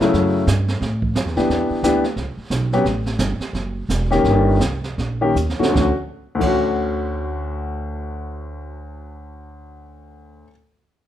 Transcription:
0.01 grand piano C#3 F#3 A3 E4, snare
0.13 upright bass F#2, brush sweep, kick, snare
0.47 upright bass G2, kick, snare, hi-hat pedal
0.68 snare
0.81 upright bass A2, brush sweep, kick, snare
1.02 kick
1.15 upright bass F#2, kick, snare, hi-hat pedal
1.25 upright bass E2, snare
1.36 upright bass C#2, grand piano E3 B3 D4 G4, snare
1.38 snare
1.49 upright bass E2, brush sweep, kick, snare
1.70 muted upright bass stroke
1.83 upright bass D2, grand piano E3 B3 D4 G4, kick, snare, hi-hat pedal
2.04 snare
2.16 upright bass C#2, brush sweep, kick, snare
2.37 muted upright bass stroke
2.50 upright bass B1, kick, snare, hi-hat pedal
2.72 grand piano F#3 B3 C#4 G4, snare
2.85 upright bass A1, brush sweep, kick, snare
3.06 snare
3.19 upright bass G1, kick, snare, hi-hat pedal
3.40 muted upright bass stroke, snare
3.53 upright bass F#1, brush sweep, kick, snare
3.89 upright bass E1, kick, snare, hi-hat pedal
4.10 grand piano D#3 A#3 C#4 G4, snare
4.24 upright bass G1, brush sweep, kick, snare
4.60 upright bass C2, kick, snare, hi-hat pedal
4.84 snare
4.98 upright bass A#1, brush sweep, kick, snare
5.21 grand piano D#3 A#3 C#4 G4
5.35 upright bass D#2, hi-hat pedal
5.50 snare
5.59 grand piano D3 A3 C#4 F#4, muted upright bass stroke, snare
5.69 grand piano D2 D3
5.75 upright bass D2, grand piano C#4, kick, snare
5.81 grand piano F#4
6.35 grand piano D2 D3
6.41 upright bass D2, grand piano C#4, kick, crash
6.47 grand piano F#4

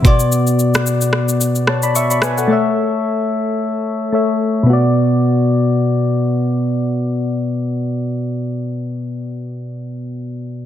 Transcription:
0.02 synth keys B2 B3 F#4, kick, high agogo, shaker
0.07 synth keys D5
0.20 shaker
0.32 shaker
0.47 shaker
0.59 shaker
0.74 cross-stick, shaker
0.86 shaker
1.01 shaker
1.13 cross-stick
1.29 shaker
1.41 shaker
1.55 shaker
1.67 synth keys C#5 A5, cross-stick
1.83 synth keys D5 B5, shaker
1.95 synth keys E5 C#6, shaker
2.11 synth keys D5 B5, shaker
2.22 synth keys B4 G#5, cross-stick, shaker
2.38 synth keys A4 F#5, shaker
2.48 synth keys A3 A4 C#5
2.53 synth keys E5
4.12 synth keys A3 A4 C#5 E5
4.63 synth keys B2 B3
4.70 synth keys F#4 D5

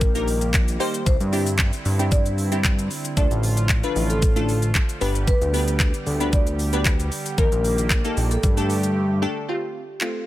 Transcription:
Already playing: analog synth bass A#1, analog synth pad D#3 G3 A#3 G4, marimba A#4
0.01 kick, shaker
0.15 synth stab A#3 D#4 G4 A#4, closed hi-hat, shaker
0.28 open hi-hat, shaker
0.41 closed hi-hat, shaker
0.54 kick, clap, shaker
0.68 closed hi-hat, shaker
0.80 synth stab A#3 D#4 G4 C5, open hi-hat, shaker
0.94 closed hi-hat, shaker
1.06 analog synth bass C2, analog synth pad D3 C4 E4, marimba C5, kick, shaker
1.20 analog synth bass G2, closed hi-hat, shaker
1.32 synth stab C4 D4 E4 G4, open hi-hat, shaker
1.47 closed hi-hat, shaker
1.59 kick, clap, shaker
1.73 closed hi-hat, shaker
1.85 analog synth bass G2, open hi-hat, shaker
1.99 synth stab C4 D4 E4 G4, closed hi-hat, shaker
2.12 marimba D5, kick, shaker
2.26 closed hi-hat, shaker
2.38 open hi-hat, shaker
2.52 synth stab C4 D4 E4 G4, closed hi-hat, shaker
2.64 kick, clap, shaker
2.79 closed hi-hat, shaker
2.91 open hi-hat, shaker
3.05 closed hi-hat, shaker
3.17 analog synth bass D2, analog synth pad F3 A3 F4, synth stab A3 D4 F4 A4, marimba D5, kick, shaker
3.31 analog synth bass A1, closed hi-hat, shaker
3.43 open hi-hat, shaker
3.57 closed hi-hat, shaker
3.69 kick, clap, shaker
3.83 synth stab A3 D4 F4 B4, closed hi-hat, shaker
3.96 analog synth bass A1, open hi-hat, shaker
4.10 marimba A4, closed hi-hat, shaker
4.22 kick, shaker
4.36 synth stab A3 D4 F4 A4, closed hi-hat, shaker
4.49 open hi-hat, shaker
4.62 closed hi-hat, shaker
4.75 kick, clap, shaker
4.89 closed hi-hat, shaker
5.01 analog synth bass G1, analog synth pad D3 G3 B3 G4, synth stab B3 D4 G4 B4, open hi-hat, shaker
5.15 closed hi-hat, shaker
5.27 marimba B4, kick, shaker
5.41 analog synth bass D2, closed hi-hat, shaker
5.54 synth stab B3 D4 G4 B4, open hi-hat, shaker
5.68 closed hi-hat, shaker
5.80 kick, clap, shaker
5.94 closed hi-hat, shaker
6.06 analog synth bass D2, open hi-hat, shaker
6.20 synth stab B3 D4 G4 B4, closed hi-hat, shaker
6.33 marimba D5, kick, shaker
6.47 closed hi-hat, shaker
6.59 open hi-hat, shaker
6.73 synth stab B3 D4 G4 B4, closed hi-hat, shaker
6.85 kick, clap, shaker
7.00 closed hi-hat, shaker
7.12 open hi-hat, shaker
7.26 closed hi-hat, shaker
7.38 analog synth bass D#2, analog synth pad D#3 A#3, synth stab A#3 D#4 G4 A#4, marimba A#4, kick, shaker
7.52 analog synth bass A#1, closed hi-hat, shaker
7.64 open hi-hat, shaker
7.78 closed hi-hat, shaker
7.90 kick, clap, shaker
8.05 synth stab A#3 D#4 G4 A4, closed hi-hat, shaker
8.17 analog synth bass A#1, open hi-hat, shaker
8.31 marimba A4, closed hi-hat, shaker
8.43 analog synth bass G2, analog synth pad D3 A3 G4, kick, shaker
8.57 synth stab A3 D4 G4 A4, closed hi-hat, shaker
8.70 open hi-hat, shaker
8.83 closed hi-hat, shaker
9.22 synth stab A3 D4 G4 A4
9.48 synth stab A3 C4 F4, marimba G4
10.01 synth stab A3 C4 F4, marimba A4, clap

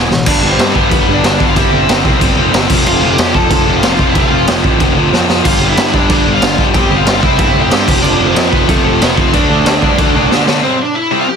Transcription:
Already playing: overdriven electric guitar E3
0.10 picked electric bass A1, distorted electric guitar E2 B2, snare
0.26 picked electric bass G1, distorted electric guitar G2 D3 G3, lead electric guitar D4 D5, kick, crash
0.42 picked electric bass G1, distorted electric guitar G2 D3 G3
0.50 lead electric guitar C4 C5
0.59 picked electric bass G2, distorted electric guitar G2 D3 G3, snare, crash
0.72 picked electric bass G1, distorted electric guitar D3 G3, lead electric guitar B3 B4, kick
0.76 distorted electric guitar G2
0.90 picked electric bass G1, distorted electric guitar G2 D3 G3, lead electric guitar B3 B4, kick, crash
1.06 picked electric bass G1, distorted electric guitar G2 D3 G3
1.14 lead electric guitar D4 D5
1.23 picked electric bass G1, distorted electric guitar G2 D3 G3, snare, crash
1.39 picked electric bass G1, distorted electric guitar G2 D3 G3, kick
1.47 lead electric guitar F4 F5
1.55 picked electric bass G1, distorted electric guitar C3 G3 C4, lead electric guitar E4 E5, kick, crash
1.71 picked electric bass G1, distorted electric guitar C3 G3 C4
1.88 picked electric bass G1, distorted electric guitar C3 G3 C4, snare, crash
2.04 picked electric bass C2, distorted electric guitar C3 G3 C4, kick
2.20 picked electric bass G1, distorted electric guitar C3 G3 C4, kick, crash
2.37 picked electric bass F1, distorted electric guitar C3 G3 C4
2.53 picked electric bass G1, distorted electric guitar C3 G3 C4, snare, crash
2.70 picked electric bass F1, distorted electric guitar F2 C3 F3, kick, crash
2.85 picked electric bass F1, distorted electric guitar F2 C3 F3, lead electric guitar F4 F5, crash
3.02 picked electric bass F1, distorted electric guitar F2 C3 F3
3.11 lead electric guitar G4 G5
3.17 distorted electric guitar F2 C3 F3, picked electric bass F2, snare, crash
3.34 picked electric bass F1, distorted electric guitar F2 C3 F3, lead electric guitar A4 A5, kick
3.50 picked electric bass F1, distorted electric guitar F2 C3 F3, lead electric guitar A4 A5, kick, crash
3.65 picked electric bass F1, distorted electric guitar F2 C3 F3
3.76 lead electric guitar F4 F5
3.83 picked electric bass F1, distorted electric guitar F2 C3 F3, snare, crash
3.99 picked electric bass F1, distorted electric guitar F2 C3 F3, kick
4.09 lead electric guitar E4 E5
4.15 picked electric bass F1, distorted electric guitar F2 C3 F3, lead electric guitar F4 F5, kick, crash
4.31 picked electric bass F1, distorted electric guitar F2 C3 F3
4.47 picked electric bass F1, distorted electric guitar F2 C3 F3, snare, crash
4.63 picked electric bass A1, distorted electric guitar F2 C3 F3, kick
4.79 picked electric bass F1, distorted electric guitar F2 C3 F3, kick, crash
4.96 picked electric bass D2, distorted electric guitar F2 C3 F3
5.12 picked electric bass F2, distorted electric guitar F2 C3 F3, snare
5.29 distorted electric guitar F2 C3 F3, snare
5.45 picked electric bass G1, distorted electric guitar G2 D3 G3, lead electric guitar F4 F5, kick, crash
5.62 picked electric bass G1, distorted electric guitar G2 D3 G3
5.69 lead electric guitar E4 E5
5.77 picked electric bass G2, distorted electric guitar G2 D3 G3, snare, crash
5.94 picked electric bass G1, distorted electric guitar G2 D3 G3, lead electric guitar D4 D5, kick
6.09 picked electric bass G1, distorted electric guitar G2 D3 G3, lead electric guitar D4 D5, kick, crash
6.25 picked electric bass G1, distorted electric guitar G2 D3 G3
6.33 lead electric guitar F4 F5
6.41 picked electric bass G1, distorted electric guitar G2 D3 G3, snare, crash
6.58 picked electric bass G1, distorted electric guitar G2 D3 G3, kick
6.74 picked electric bass G1, distorted electric guitar C3 G3 C4, lead electric guitar G4 G5, kick, crash
6.91 picked electric bass G1, distorted electric guitar C3 G3 C4
6.96 lead electric guitar F4 F5
7.05 picked electric bass G1, distorted electric guitar C3 G3 C4, snare, crash
7.22 picked electric bass C2, distorted electric guitar C3 G3 C4, lead electric guitar E4 E5, kick
7.37 picked electric bass G1, distorted electric guitar C3 G3 C4, lead electric guitar E4 E5, kick, crash
7.54 picked electric bass F1, distorted electric guitar C3 G3 C4
7.62 lead electric guitar G4 G5
7.71 picked electric bass G2, distorted electric guitar C3 G3 C4, snare, crash
7.88 picked electric bass F1, distorted electric guitar F2 C3 F3, kick, crash
8.02 picked electric bass F1, distorted electric guitar F2 C3 F3, lead electric guitar D4 D5, crash
8.20 picked electric bass F1, distorted electric guitar F2 C3 F3
8.27 lead electric guitar C4 C5
8.36 picked electric bass F2, distorted electric guitar F2 C3 F3, snare, crash
8.50 picked electric bass F1, distorted electric guitar F2 C3 F3, lead electric guitar B3 B4, kick
8.68 picked electric bass F1, distorted electric guitar F2 C3 F3, lead electric guitar A3 A4, kick, crash
8.84 picked electric bass F1, distorted electric guitar F2 C3 F3, lead electric guitar A4
8.88 lead electric guitar A3
9.00 picked electric bass F1, distorted electric guitar F2 C3 F3, lead electric guitar B3 B4, snare, crash
9.16 picked electric bass F1, distorted electric guitar F2 C3 F3, lead electric guitar C4 C5, kick
9.32 picked electric bass D2, distorted electric guitar D3 A3 D4, lead electric guitar D4 D5, kick, crash
9.49 picked electric bass D2, distorted electric guitar D3 A3 D4
9.65 picked electric bass D2, distorted electric guitar D3 A3 D4, snare, crash
9.82 picked electric bass G2, distorted electric guitar D3 A3 D4, kick
9.97 picked electric bass D2, distorted electric guitar D3 A3 D4, kick, crash
10.14 picked electric bass C2, distorted electric guitar D3 A3 D4
10.30 distorted electric guitar D3 A3 D4, picked electric bass D3, snare
10.48 distorted electric guitar D3 A3 D4, snare
10.63 distorted electric guitar C3 G3 C4, lead electric guitar C4 C5
10.81 lead electric guitar D4 D5
10.95 lead electric guitar E4 E5
11.11 distorted electric guitar C3 G3 C4
11.20 lead electric guitar F4 F5
11.28 lead electric guitar G4 G5

